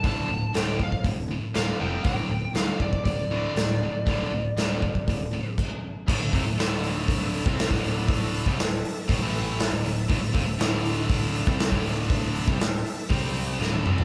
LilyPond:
<<
  \new Staff \with { instrumentName = "Lead electric guitar" } { \time 4/4 \key d \minor \tempo 4 = 120 a''4 g''8 f''8 r4 f''8 g''8 | g''4 f''8 d''8 d''2~ | d''2. r4 | r1 |
r1 | r1 | r1 | }
  \new Staff \with { instrumentName = "Tonewheel organ" } { \time 4/4 \key d \minor r1 | r1 | r1 | <d' a' e''>1~ |
<d' a' e''>2~ <d' a' e''>16 <a e'>4 <d' e''>8.~ | <d' e''>1~ | <d' e''>2 <c' g' d''>4 <d' a' e''>4 | }
  \new Staff \with { instrumentName = "Distorted electric guitar" } { \clef bass \time 4/4 \key d \minor <d, a, d>8 <d, a,>8 <d, a, d>8 <d, a,>8 <d, a,>8 <d, a,>8 <d, a, d>8 <f, c f>8 | <d, a, d>8 <d, a,>8 <d, a, d>8 <d, a,>8 <d, a,>8 <d, a, d>8 <d, a,>8 <d, a,>8 | <d, a, d>8 <d, a,>8 <d, a, d>8 <d, a,>8 <d, a,>8 <d, a,>8 r4 | <d, a,>16 <d, a,>16 <f, c>16 <d, a,>16 <d, a, d>4.~ <d, a, d>16 <c g c'>8 <d, a, d>8.~ |
<d, a, d>8. <c g>16 <d, a,>8 r8 <d, a,>16 <a, e a>4 <d, a,>16 <d, a,>8 | <d, a,>16 <d, a,>16 <f, c>16 <d, a,>16 <d, a, d>4.~ <d, a, d>16 <c g c'>8 <d, a, d>8.~ | <d, a, d>8. <c g>16 <d, a,>8 r8 <c g c'>4 <d, a, d>8 <c g c'>8 | }
  \new Staff \with { instrumentName = "Overdriven electric guitar" } { \clef bass \time 4/4 \key d \minor <d, a, d>8 <d, a,>8 <d, a, d>8 <d, a,>8 <d, a,>8 <d, a,>8 <d, a, d>8 <f, c f>8 | <d, a, d>8 <d, a,>8 <d, a, d>8 <d, a,>8 <d, a,>8 <d, a, d>8 <d, a,>8 <d, a,>8 | <d, a, d>8 <d, a,>8 <d, a, d>8 <d, a,>8 <d, a,>8 <d, a,>8 r4 | <d, a,>16 <d, a,>16 <f, c>16 <d, a,>16 <d, a, d>4.~ <d, a, d>16 <c g c'>8 <d, a, d>8.~ |
<d, a, d>8. <c g>16 <d, a,>8 r8 <d, a,>16 <a, e a>4 <d, a,>16 <d, a,>8 | <d, a,>16 <d, a,>16 <f, c>16 <d, a,>16 <d, a, d>4.~ <d, a, d>16 <c g c'>8 <d, a, d>8.~ | <d, a, d>8. <c g>16 <d, a,>8 r8 <c g c'>4 <d, a, d>8 <c g c'>8 | }
  \new Staff \with { instrumentName = "Picked electric bass" } { \clef bass \time 4/4 \key d \minor d,,8 d,,8 d,,4 d,,4 d,,8 f,,8 | d,,8 d,,8 d,8 d,,8 d,,8 d,,8 d,,4 | d,,8 d,,8 d,,4 d,,4 r4 | d,,16 d,,16 f,,16 d,,16 d,,4.~ d,,16 c,8 d,,8.~ |
d,,8. c,16 d,,8 r8 d,,16 a,,4 d,,16 d,,8 | d,,16 d,,16 f,,16 d,,16 d,,4.~ d,,16 c,8 d,,8.~ | d,,8. c,16 d,,8 r8 c,4 d,,8 c,8 | }
  \new DrumStaff \with { instrumentName = "Drums" } \drummode { \time 4/4 <hho bd>4 <hho sn>8 bd16 bd16 <hho bd>4 <hho sn>4 | <hho bd>4 <hho sn>8 bd16 bd16 <hho bd>4 <hho sn>4 | <hho bd>4 <hho sn>8 bd16 bd16 <hho bd>4 <cymc bd>4 | <cymc bd>8 <hho bd>8 <hho sn>8 hho8 <hho bd>8 hho16 bd16 <hho sn>16 bd16 hho8 |
<hho bd>8 hho16 bd16 <hho sn>8 hho8 <hho bd>8 hho8 <hho sn>8 hho8 | <hho bd>8 <hho bd>8 <hho sn>8 hho8 <hho bd>8 hho16 bd16 <hho sn>16 bd16 hho8 | <hho bd>8 hho16 bd16 <hho sn>8 hho8 <hho bd>8 hho8 sn16 tommh16 toml16 tomfh16 | }
>>